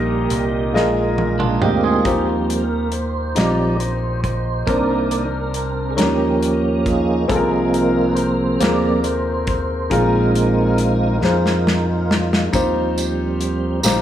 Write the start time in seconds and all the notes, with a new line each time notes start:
Already playing: A#1 A#2 D#3 G3 A#3 D#4 G4 A#4 D#5
0.30 C2, closed hi-hat
0.74 A#1 A#2 G#3 D#4 F4 G#4 A#4 D#5, snare
1.18 high tom
1.39 D4 F4, mid tom
1.60 D2 A#3 C4 D#4 G4, mid tom
1.83 F4 G#4
2.05 D#2 D#3 F3 G3 C4 D#4 F4 G4 C5, kick, closed hi-hat
2.49 A#4, closed hi-hat
2.92 C5, closed hi-hat
3.35 A#1 F3 G3 C4 D#4 F4 G4 D5 D#5, snare, closed hi-hat
3.80 C5, closed hi-hat
4.24 C5, kick, closed hi-hat
4.66 C2 C3 D#3 A#3 C4 D4 D#4 A#4 C5 D5, kick, closed hi-hat
5.11 closed hi-hat
5.54 closed hi-hat
5.91 G#4
5.96 D#2 D#3 F3 A#3 C#4 D#4 G4 A#4, snare, closed hi-hat
6.41 G4, closed hi-hat
6.86 D#4 F4 G#4, kick, closed hi-hat
7.28 C2 C3 F3 A#3 C4 F4 G#4 A4, kick, closed hi-hat
7.36 A#4
7.74 A#4, closed hi-hat
8.09 B4
8.15 C5, closed hi-hat
8.59 D#2 F3 A#3 C4 F4 G#4 A#4 D5, snare, closed hi-hat
9.04 C5, closed hi-hat
9.47 C5, kick, closed hi-hat
9.90 A#1 A#2 D#3 G#3 C4 D#4 F4 G#4 A#4, kick, closed hi-hat
10.35 closed hi-hat
10.78 closed hi-hat
11.20 F2 D#4 F4 G#4 A#4 C5, snare
11.46 snare
11.67 snare
12.11 snare
12.33 snare
12.53 D#2 D#3 F3 G3 C4 D#4 F4 G4 C5, kick, closed hi-hat, tambourine
12.98 closed hi-hat, tambourine
13.41 closed hi-hat
13.83 A#1 D#4 F4 G4 C5, snare, closed hi-hat, tambourine